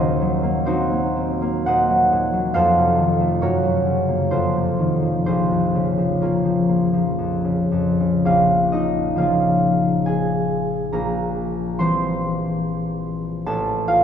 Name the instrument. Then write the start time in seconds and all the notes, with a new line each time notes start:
harp
Already playing: D#2 A#2 F#3 A#3 F#4 A#4 C5 D#5 F#5
0.21 F#3
0.43 A#3
0.66 C4 D#4 F#4 C5
0.91 A#3
1.16 C4
1.42 A#3
1.66 A#2 C5 D#5 F#5
1.89 F#3
2.12 A#2
2.33 F#3
2.54 F2 A4 C5 F5
2.77 C3
2.98 D#3
3.20 A3
3.41 F#2 F#4 A#4 C#5
3.63 F#3
3.86 C#3
4.08 A#3
4.30 F2 F4 A4 C5
4.53 C3
4.79 D#3
5.02 F3
5.26 A#1 F4 C5
5.51 F2
5.75 C#3
5.98 F3
6.21 A#3 C#4 F4 A#4
6.45 F3
6.69 A#3
6.93 F3
7.18 F2
7.44 C#3
7.72 F2
8.00 C#3
8.25 A#1 F4 F5
8.72 D#4 D#5
9.16 C#3 F3 A#3 F5
9.22 F4
10.06 G#4 G#5
10.93 A#1 A#4 A#5
11.79 E3 G3 C4 C5 C6
13.46 A1 A4 A5
13.88 F4 F5